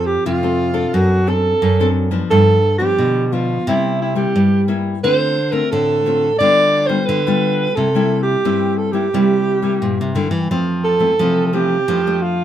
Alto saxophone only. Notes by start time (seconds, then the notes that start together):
0.06 G4
0.26 F4
0.94 F#4
1.28 A4
2.30 A4
2.78 G4
3.27 G4
3.33 F4
3.68 E4
4.02 E4
4.17 G4
5.04 C5
5.52 A#4
5.71 A4
6.38 D5
6.86 C5
7.06 B4
7.75 A4
8.23 G4
8.77 A4
8.92 G4
10.84 A4
11.46 A4
11.53 G4
12.22 F4